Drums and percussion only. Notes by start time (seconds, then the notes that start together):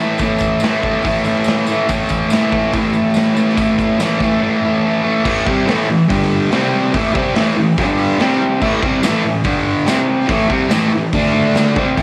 0.18 kick, open hi-hat, tambourine
0.39 kick, tambourine
0.60 open hi-hat, tambourine
0.64 snare
0.83 kick
1.02 kick, open hi-hat, tambourine
1.24 tambourine
1.44 open hi-hat, tambourine
1.48 snare
1.66 tambourine
1.89 kick, open hi-hat, tambourine
2.09 kick, tambourine
2.30 snare, open hi-hat, tambourine
2.52 kick
2.72 kick, open hi-hat, tambourine
2.93 tambourine
3.14 snare, open hi-hat, tambourine
3.36 tambourine
3.49 snare
3.57 kick, open hi-hat, tambourine
3.79 kick, tambourine
3.99 snare, open hi-hat, tambourine
4.20 kick, tambourine
5.25 kick, crash
5.47 kick
5.68 snare, open hi-hat
6.10 kick, open hi-hat
6.22 snare
6.52 snare, open hi-hat
6.94 kick, open hi-hat
7.15 kick
7.35 snare, open hi-hat
7.77 kick, open hi-hat
8.20 snare, open hi-hat
8.61 kick, crash
8.82 kick
9.03 snare, open hi-hat, tambourine
9.44 kick, open hi-hat
9.87 snare, open hi-hat, tambourine
10.29 kick, open hi-hat
10.50 kick
10.70 snare, open hi-hat, tambourine
11.13 kick, open hi-hat
11.26 snare
11.55 snare, open hi-hat, tambourine
11.76 kick
11.97 kick, crash, tambourine